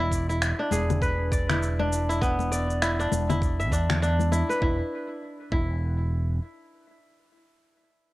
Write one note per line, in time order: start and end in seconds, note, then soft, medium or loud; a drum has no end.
0.00 0.52 E1 loud
0.00 0.29 E4 loud
0.00 0.80 D5 medium
0.00 0.55 E5 medium
0.12 kick medium
0.12 shaker medium
0.29 1.49 E4 medium
0.29 shaker soft
0.42 finger snap medium
0.42 shaker soft
0.59 1.79 D4 medium
0.71 3.06 E1 medium
0.71 2.08 G#4 medium
0.71 high conga medium
0.71 shaker medium
0.90 muted conga medium
0.90 low conga medium
0.90 shaker soft
1.02 2.25 B4 medium
1.02 kick loud
1.02 shaker soft
1.32 2.42 D5 medium
1.32 kick loud
1.32 shaker medium
1.49 2.09 E4 medium
1.49 finger snap medium
1.49 low conga medium
1.49 shaker soft
1.63 shaker soft
1.79 2.99 D4 medium
1.79 high conga medium
1.93 shaker medium
2.09 2.82 E4 medium
2.09 shaker soft
2.21 4.08 B3 loud
2.21 kick loud
2.21 shaker soft
2.39 muted conga soft
2.39 high conga medium
2.39 shaker soft
2.52 3.62 D5 medium
2.52 shaker medium
2.70 shaker soft
2.82 3.29 E4 medium
2.82 finger snap medium
2.82 shaker soft
2.99 3.72 D4 medium
2.99 shaker soft
3.12 3.72 E1 medium
3.12 high conga medium
3.12 shaker medium
3.30 4.31 E4 medium
3.30 muted conga medium
3.30 low conga loud
3.30 shaker soft
3.42 kick loud
3.42 shaker soft
3.60 4.63 E5 medium
3.60 shaker soft
3.71 4.42 E2 loud
3.71 4.02 D4 medium
3.71 kick medium
3.71 high conga soft
3.71 shaker medium
3.89 finger snap medium
3.89 low conga loud
3.89 shaker soft
4.02 5.70 D4 medium
4.02 shaker soft
4.19 high conga medium
4.19 shaker soft
4.32 4.62 E4 medium
4.32 high conga medium
4.32 shaker medium
4.49 5.72 B4 medium
4.49 shaker soft
4.62 4.81 E1 loud
4.62 5.51 E4 loud
4.62 kick loud
5.52 6.38 E1 medium
5.52 7.09 E4 medium
5.52 kick loud